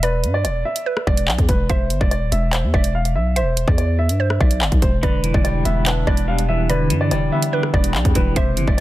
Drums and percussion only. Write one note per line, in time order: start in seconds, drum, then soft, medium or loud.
0.03 closed hi-hat medium
0.24 closed hi-hat medium
0.45 closed hi-hat medium
0.76 closed hi-hat medium
0.97 cross-stick loud
1.07 kick medium
1.17 closed hi-hat medium
1.28 clap loud
1.38 kick loud
1.38 closed hi-hat medium
1.49 kick loud
1.49 closed hi-hat medium
1.70 kick loud
1.70 closed hi-hat medium
1.90 closed hi-hat medium
2.01 kick loud
2.11 closed hi-hat medium
2.32 closed hi-hat medium
2.53 clap loud
2.53 closed hi-hat medium
2.74 kick medium
2.84 closed hi-hat medium
3.05 closed hi-hat medium
3.36 closed hi-hat medium
3.57 closed hi-hat medium
3.68 kick loud
3.78 closed hi-hat medium
4.09 closed hi-hat medium
4.30 cross-stick loud
4.41 kick medium
4.51 closed hi-hat medium
4.61 clap loud
4.72 kick loud
4.72 closed hi-hat medium
4.82 kick loud
4.82 closed hi-hat medium
5.03 kick loud
5.03 closed hi-hat medium
5.24 closed hi-hat medium
5.34 kick loud
5.45 closed hi-hat medium
5.65 closed hi-hat medium
5.86 clap loud
5.86 closed hi-hat medium
6.07 kick medium
6.17 closed hi-hat medium
6.38 closed hi-hat medium
6.70 closed hi-hat medium
6.90 closed hi-hat medium
7.11 closed hi-hat medium
7.42 closed hi-hat medium
7.63 cross-stick loud
7.74 kick medium
7.84 closed hi-hat medium
7.95 clap loud
8.05 kick loud
8.05 closed hi-hat medium
8.15 kick loud
8.15 closed hi-hat medium
8.36 kick loud
8.36 closed hi-hat medium
8.57 closed hi-hat medium
8.68 kick loud